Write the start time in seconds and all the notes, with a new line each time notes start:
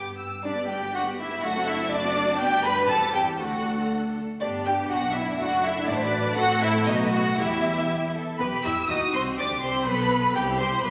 Already playing: G2 B3 G4 G5 D6
0.20 E6
0.44 G1 G3 D4 G4 D5
0.57 B3 G4
0.70 G3 D4 G4 G5
0.82 B3 G4
0.93 G3 D4 F#4 F#5
1.07 B3 G4
1.18 G3 D4 E4 E5
1.31 B3 G4
1.43 F#1 A3 D4 F#4 A4 F#5
1.56 C4 F#4
1.67 A3 D4 E4 E5
1.80 C4 F#4
1.91 A3 D4 F#4 D5
2.04 C4 F#4
2.16 A3 D4
2.28 C4 F#4
2.40 G1 B3 D4 G4 G5
2.64 A3 B4 B5
2.89 E2 G3 C4 G4 A4 A5
3.14 G4 G5
3.39 D2 A3 D4 F#4 A4 F#5
4.40 G1 B3 D4 G4 D5
4.65 G4 G5
4.90 B1 D4 F#4 F#5
5.14 E4 E5
5.39 F#1 A3 D4 F#4 F#5
5.64 E4 E5
5.89 A1 F#3 A3 D4 B4 D5
5.96 C5
6.03 D5
6.37 A1 A3 C4 F#4 A4 F#5
6.62 E4 E5
6.87 B1 A3 B3 D#4 F#4 D#5
7.11 F#4 F#5
7.37 E2 G3 B3 E4 G4 E5
7.88 G4
8.13 A4
8.39 B1 B3 G4 B4 B5
8.64 E2 E4 E5 E6
8.89 D#2 D#4 F#4 D#5 D#6
9.13 C2 C4 C5 C6
9.37 D2 D4 G4 D5 D6
9.62 C2 C4 C5 C6
9.86 B1 B3 A4 B4 B5
10.35 C2 C4 G4 G5
10.47 E4 C5
10.59 C4 G4 C5 C6
10.71 E4 C5
10.83 B1 B3 G4 B4 B5